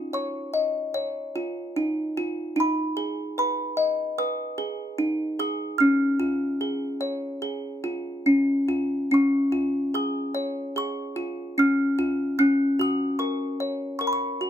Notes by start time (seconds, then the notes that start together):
Already playing: D#4 F4
0.13 C#5 C#6
0.54 D#5
0.94 C#5
1.36 F4
1.76 D#4
2.17 F4
2.56 D#4
2.60 B5
2.97 G#4
3.38 B4 B5
3.77 D#5
4.18 B4 D#6
4.58 G#4
4.98 D#4
5.39 G#4 D#6
5.78 C#4 F6
6.20 F4
6.61 G#4
7.01 C#5
7.42 G#4
7.84 F4
8.26 C#4
8.68 F4
9.11 C#4 C#6
9.52 F4
9.94 G#4 D#6
10.35 C#5
10.76 G#4 C#6
11.16 F4
11.58 C#4 F6
11.99 F4
12.39 C#4 F#6
12.79 F#4 D#6
13.19 A#4 C#6
13.60 C#5
13.99 A#4 C#6
14.07 B5
14.13 C#6
14.41 F#4